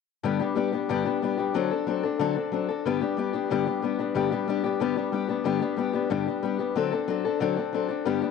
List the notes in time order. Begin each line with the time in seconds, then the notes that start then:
0.23 G2 D3 G3 B3 D4 G4
0.39 G3 B3 D4 G4
0.55 G3 B3 D4 G4
0.72 G3 B3 D4 G4
0.89 G2 D3 G3 B3 D4 G4
1.05 G3 B3 D4 G4
1.22 G3 B3 D4 G4
1.38 G3 B3 D4 G4
1.54 D3 F#3 C4 D4 A4
1.71 C4 D4 A4
1.87 F#3 C4 D4 A4
2.03 C4 D4 A4
2.19 D3 F#3 C4 D4 A4
2.36 C4 D4 A4
2.52 F#3 C4 D4 A4
2.69 C4 D4 A4
2.85 G2 D3 G3 B3 D4 G4
3.01 G3 B3 D4 G4
3.17 G3 B3 D4 G4
3.33 G3 B3 D4 G4
3.50 G2 D3 G3 B3 D4 G4
3.66 G3 B3 D4 G4
3.82 G3 B3 D4 G4
3.99 G3 B3 D4 G4
4.15 G2 D3 G3 B3 D4 G4
4.31 G3 B3 D4 G4
4.47 G3 B3 D4 G4
4.64 G3 B3 D4 G4
4.80 G2 D3 G3 B3 D4 G4
4.96 G3 B3 D4 G4
5.12 G3 B3 D4 G4
5.28 G3 B3 D4 G4
5.44 G2 D3 G3 B3 D4 G4
5.61 G3 B3 D4 G4
5.76 G3 B3 D4 G4
5.93 G3 B3 D4 G4
6.10 G2 D3 G3 B3 D4 G4
6.27 G3 B3 D4 G4
6.43 G3 B3 D4 G4
6.59 G3 B3 D4 G4
6.75 D3 F#3 C4 D4 A4
6.92 C4 D4 A4
7.08 F#3 C4 D4 A4
7.25 C4 D4 A4
7.40 D3 F#3 C4 D4 A4
7.56 C4 D4 A4
7.73 F#3 C4 D4 A4
7.88 C4 D4 A4
8.05 G2 D3 G3 B3 D4 G4
8.22 G3 B3 D4 G4